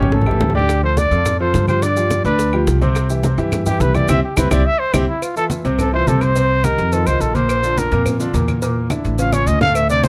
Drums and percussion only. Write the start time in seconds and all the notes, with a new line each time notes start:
0.02 low conga
0.12 high bongo, low conga
0.21 low conga
0.26 high bongo, claves
0.31 low conga
0.40 high bongo, low bongo, low conga
0.50 low conga
0.55 high bongo
0.59 low conga
0.69 high bongo, high conga, claves, maracas
0.83 high conga
0.97 high bongo, high conga, maracas
1.12 maracas
1.25 high bongo, high conga, low conga, claves, maracas
1.39 high conga
1.54 high bongo, low bongo, high conga, maracas
1.68 high conga, claves, maracas
1.82 high bongo, high conga, maracas
1.96 high bongo, high conga, maracas
2.11 high bongo, high conga, claves, maracas
2.25 high conga, maracas
2.39 high bongo, high conga, maracas
2.53 high bongo, high conga, claves
2.67 high bongo, low bongo, maracas
2.81 high bongo, high conga, maracas
2.95 high bongo, claves, maracas
3.10 high conga, maracas
3.23 high bongo, high conga, maracas
3.38 maracas
3.52 high bongo, high conga, low conga, claves, maracas
3.66 high conga, low conga, maracas
3.80 high bongo, low bongo, high conga, maracas
3.95 high conga, claves, maracas
4.08 low bongo, high conga, claves, maracas
4.37 low bongo, high conga, claves, maracas
4.51 low bongo, high conga, claves, maracas
4.94 low bongo, high conga, claves, maracas
5.22 cowbell, high conga, claves, maracas
5.36 high conga, maracas
5.50 cowbell, high conga, maracas
5.65 cowbell, maracas
5.78 cowbell, high conga, low conga, claves, maracas
5.93 high conga
6.07 cowbell, high conga, maracas
6.21 cowbell, high conga, claves, maracas
6.36 cowbell, maracas
6.50 high conga
6.64 cowbell, high conga, claves, maracas
6.78 cowbell, high conga, maracas
6.92 cowbell, high conga, maracas
7.06 high conga, claves, maracas
7.21 cowbell, high conga, maracas
7.35 cowbell, high conga, maracas
7.49 cowbell, high conga, claves, maracas
7.63 high conga, maracas
7.78 cowbell, high conga, maracas
7.92 cowbell, maracas
8.06 cowbell, high conga, low conga, claves, maracas
8.20 high conga, maracas
8.34 cowbell, high conga, maracas
8.48 cowbell, high conga, claves, maracas
8.62 cowbell, high conga, maracas
8.76 high conga
8.90 cowbell, high conga, claves, maracas
9.04 cowbell, high conga, maracas
9.19 cowbell, high conga, maracas
9.33 high conga, claves, maracas
9.47 cowbell, high conga, maracas
9.61 cowbell, low conga, maracas
9.75 cowbell, high conga, claves, maracas
9.90 high conga, maracas
10.04 cowbell, high conga, maracas